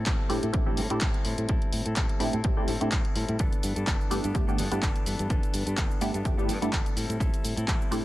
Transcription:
0.06 A1 G3 C4 E4 A4, kick, clap, closed hi-hat
0.29 A2 G3 A3 C4 D4 E4 G4 A4, open hi-hat, tambourine
0.43 A2 C4 E4 A4, closed hi-hat, tambourine
0.53 A1 A3 C4 D4 E4 G4, kick, closed hi-hat
0.66 A3 C4 D4 E4 G4 A4
0.77 A2 G3 C4 E4 A4, open hi-hat, tambourine
0.90 A2 A3 C4 D4 E4 G4 A4, closed hi-hat, tambourine
1.01 A1 G3 C4 E4 A4, kick, clap, closed hi-hat
1.14 closed hi-hat
1.24 A2 G3 C4 E4 A4, open hi-hat, tambourine
1.38 A2, closed hi-hat
1.48 A1 G3 C4 E4 A4, kick, closed hi-hat, tambourine
1.62 closed hi-hat
1.73 A2, open hi-hat, tambourine
1.85 A2 C4 E4 A4, closed hi-hat, tambourine
1.96 A1 G3 C4 E4 A4, kick, clap, closed hi-hat
2.09 closed hi-hat
2.19 A2 G3 A3 C4 D4 E4 G4 A4, open hi-hat, tambourine
2.33 A2 C4 E4 A4, closed hi-hat, tambourine
2.44 A1 A3 C4 D4 E4 G4, kick, closed hi-hat
2.57 A3 C4 D4 E4 G4 A4, muted fingered electric bass stroke
2.67 A2 G3 C4 E4 A4, open hi-hat, tambourine
2.81 A2 A3 C4 D4 E4 G4 A4, closed hi-hat, tambourine
2.91 A1 G3 C4 E4 A4, kick, clap, closed hi-hat
3.04 C4 E4 A4, closed hi-hat
3.15 A2 G3 C4 E4 A4, open hi-hat, tambourine
3.29 A2, closed hi-hat
3.39 G1 E3 B3 D4 A4, kick, closed hi-hat, shaker
3.53 closed hi-hat, shaker
3.63 G2, open hi-hat, tambourine, shaker
3.76 G2 B3 D4 A4, closed hi-hat, tambourine, shaker
3.87 G1 E3 B3 D4 A4, kick, clap, closed hi-hat, shaker
4.01 shaker
4.10 G2 E3 A3 B3 D4 E4 G4 A4, open hi-hat, tambourine, shaker
4.23 G2 B3 D4 A4, closed hi-hat, tambourine, shaker
4.34 G1 A3 B3 D4 E4 G4, kick, closed hi-hat, shaker
4.47 A3 B3 D4 E4 G4 A4, shaker
4.58 G2 E3 B3 D4 A4, open hi-hat, tambourine, shaker
4.71 G2 A3 B3 D4 E4 G4 A4, closed hi-hat, tambourine, shaker
4.82 G1 E3 B3 D4 A4, kick, clap, closed hi-hat, shaker
4.96 closed hi-hat, shaker
5.05 G2 E3 B3 D4 A4, open hi-hat, tambourine, shaker
5.19 G2, closed hi-hat, tambourine, shaker
5.30 G1 E3 B3 D4 A4, kick, closed hi-hat, shaker
5.43 closed hi-hat, shaker
5.54 G2, open hi-hat, tambourine, shaker
5.66 G2 B3 D4 A4, closed hi-hat, tambourine, shaker
5.77 G1 E3 B3 D4 A4, kick, clap, closed hi-hat, shaker
5.91 shaker
6.01 G2 E3 A3 B3 D4 E4 G4 A4, open hi-hat, tambourine, shaker
6.14 G2 B3 D4 A4, closed hi-hat, tambourine, shaker
6.24 G1 A3 B3 D4 E4 G4, kick, closed hi-hat, tambourine, shaker
6.38 A3 B3 D4 E4 G4 A4, shaker
6.48 G2 E3 B3 D4 A4, open hi-hat, tambourine, shaker
6.61 G2 A3 B3 D4 E4 G4 A4, closed hi-hat, tambourine, shaker
6.72 G1 E3 B3 D4 A4, kick, clap, closed hi-hat, shaker
6.86 closed hi-hat, shaker
6.96 A2 G3 C4 E4 A4, open hi-hat, tambourine, shaker
7.09 A2, closed hi-hat, tambourine, shaker
7.20 A1 G3 C4 E4 A4, kick, closed hi-hat, tambourine, shaker
7.34 closed hi-hat, shaker
7.44 A2, open hi-hat, tambourine, shaker
7.56 A2 C4 E4 A4, closed hi-hat, tambourine, shaker
7.67 A1 G3 C4 E4 A4, kick, clap, closed hi-hat, shaker
7.82 shaker
7.91 A2 G3 A3 C4 D4 E4 G4 A4, open hi-hat, tambourine, shaker

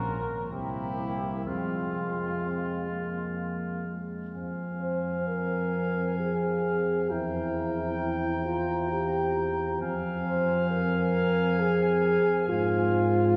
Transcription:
Already playing: A#1 A#3 C#4 F#4 A#4
0.49 C2 A#3 C4 E4 G4
1.45 F2 G#3 C4 F4
2.44 C4
2.91 A#3
3.88 G#3
4.35 F2 C4 F5 G#5
4.81 C5
5.28 A#4
6.20 G#4
7.10 E2 E4 G5 A#5
8.46 F4
8.92 G4
9.81 F2 C4 F5 G#5
10.26 C5
10.71 A#4
11.60 G#4
12.49 G#2 F4

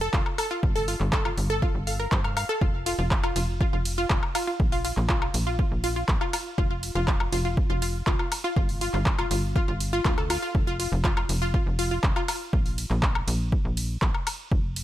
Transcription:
0.01 A4 A5
0.13 F1 F4 F5, kick, clap
0.26 high woodblock
0.38 A4 A5, open hi-hat, high woodblock
0.51 F4 F5
0.63 G1, kick
0.76 A4 A5, open hi-hat
0.88 F4 F5, open hi-hat
1.00 G1, clap
1.13 A4 A5, kick, clap
1.25 F4 F5, high woodblock
1.38 G1, open hi-hat
1.50 A4 A5
1.62 F4 F5, kick
1.75 G1
1.87 F5 F6, open hi-hat
2.00 A#4 A#5
2.12 G2 C5 C6, kick, clap
2.24 F5 F6, high woodblock
2.37 F5 F6, open hi-hat, high woodblock
2.49 A4 A5
2.61 F1 F4 F5, kick
2.86 F4 F5, open hi-hat, ride
2.99 F1 F4 F5
3.11 kick, clap
3.23 F4 F5, high woodblock
3.36 F1 F4 F5, open hi-hat, ride
3.61 F4 F5, kick
3.73 F1 F4 F5
3.85 open hi-hat, ride
3.98 F4 F5
4.10 F1 F4 F5, kick, clap
4.23 high woodblock
4.35 F4 F5, open hi-hat, ride, high woodblock
4.48 F4 F5
4.60 A#1, kick
4.72 F4 F5, open hi-hat
4.85 F4 F5, open hi-hat, ride
4.97 A#1, clap
5.09 F4 F5, kick, clap
5.22 F4 F5, high woodblock
5.34 A#1, open hi-hat, ride
5.47 F4 F5
5.59 F4 F5, kick
5.71 A#1
5.84 F4 F5, open hi-hat, ride
5.96 F4 F5
6.08 A#1, kick, clap
6.21 F4 F5, high woodblock
6.33 F4 F5, open hi-hat, ride, high woodblock
6.58 F1 F4 F5, kick
6.71 F4 F5
6.83 open hi-hat, ride
6.95 F1 F4 F5
7.08 F4 F5, kick, clap
7.20 high woodblock
7.32 F1 F4 F5, open hi-hat, ride
7.45 F4 F5
7.57 kick
7.70 F1 F4 F5
7.82 F4 F5, open hi-hat, ride
8.07 F1 F4 F5, kick, clap
8.19 F4 F5, high woodblock
8.32 open hi-hat, ride, high woodblock
8.44 F4 F5
8.56 G1 F4 F5, kick
8.69 open hi-hat
8.81 F4 F5, open hi-hat, ride
8.94 G1 F4 F5, clap
9.06 kick, clap
9.19 F4 F5, high woodblock
9.31 G1 F4 F5, open hi-hat, ride
9.56 F4 F5, kick
9.68 G1 F4 F5
9.80 open hi-hat, ride
9.93 F4 F5
10.05 D2 F4 F5, kick, clap
10.18 A4 A5, high woodblock
10.30 F4 F5, open hi-hat, ride, high woodblock
10.42 F4 F5
10.55 F1, kick
10.67 F4 F5
10.80 F4 F5, open hi-hat, ride
10.92 F1
11.04 F4 F5, kick, clap
11.17 F4 F5, high woodblock
11.29 F1, open hi-hat, ride
11.42 F4 F5
11.54 F4 F5, kick
11.66 F1
11.79 F4 F5, open hi-hat, ride
11.91 F4 F5
12.04 F1, kick, clap
12.16 F4 F5, high woodblock
12.28 F4 F5, open hi-hat, ride, high woodblock
12.53 A#1, kick
12.66 open hi-hat
12.78 open hi-hat, ride
12.90 A#1, clap
13.03 kick, clap
13.15 high woodblock
13.28 A#1, open hi-hat, ride
13.52 kick
13.65 A#1
13.77 open hi-hat, ride
14.02 A#1, kick, clap
14.14 high woodblock
14.27 open hi-hat, ride, high woodblock
14.52 F1, kick
14.76 open hi-hat, ride

